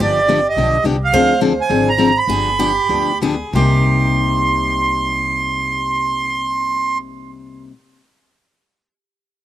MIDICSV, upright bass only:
0, 0, Header, 1, 2, 480
1, 0, Start_track
1, 0, Time_signature, 4, 2, 24, 8
1, 0, Key_signature, -3, "minor"
1, 0, Tempo, 285171
1, 3355, Tempo, 306279
1, 5275, Tempo, 333519
1, 14241, End_track
2, 0, Start_track
2, 0, Title_t, "Upright bass"
2, 0, Program_c, 0, 32
2, 0, Note_on_c, 0, 31, 85
2, 756, Note_off_c, 0, 31, 0
2, 943, Note_on_c, 0, 35, 73
2, 1351, Note_off_c, 0, 35, 0
2, 1413, Note_on_c, 0, 36, 73
2, 1824, Note_off_c, 0, 36, 0
2, 1893, Note_on_c, 0, 38, 85
2, 2666, Note_off_c, 0, 38, 0
2, 2851, Note_on_c, 0, 32, 72
2, 3626, Note_off_c, 0, 32, 0
2, 3793, Note_on_c, 0, 31, 80
2, 4569, Note_off_c, 0, 31, 0
2, 4759, Note_on_c, 0, 38, 69
2, 5551, Note_off_c, 0, 38, 0
2, 5721, Note_on_c, 0, 36, 85
2, 11678, Note_off_c, 0, 36, 0
2, 14241, End_track
0, 0, End_of_file